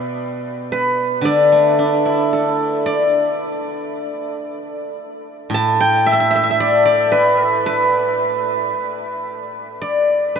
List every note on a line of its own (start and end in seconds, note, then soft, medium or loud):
0.00 1.24 B2 soft
0.00 0.72 B4 medium
0.00 0.81 D5 soft
0.00 0.18 E5 soft
0.72 2.76 B4 medium
1.21 4.45 D3 soft
1.21 2.86 D5 medium
1.52 3.67 A3 soft
1.78 3.93 D4 soft
2.05 4.20 E4 soft
2.33 4.47 A4 soft
2.86 4.95 D5 medium
5.50 8.70 A2 medium
5.54 6.99 A5 loud
5.80 7.36 G5 medium
6.06 6.13 E5 medium
6.13 6.20 E5 medium
6.20 6.30 E5 medium
6.31 6.35 E5 medium
6.35 6.43 E5 medium
6.44 6.50 E5 medium
6.51 8.23 E5 medium
6.60 6.85 D5 medium
6.85 8.70 D5 medium
7.12 7.43 B4 medium
7.43 7.66 A4 medium
7.66 8.74 B4 medium
8.74 9.00 A#4 medium
9.00 9.77 A4 medium
9.82 10.40 D5 medium
10.36 10.40 B4 medium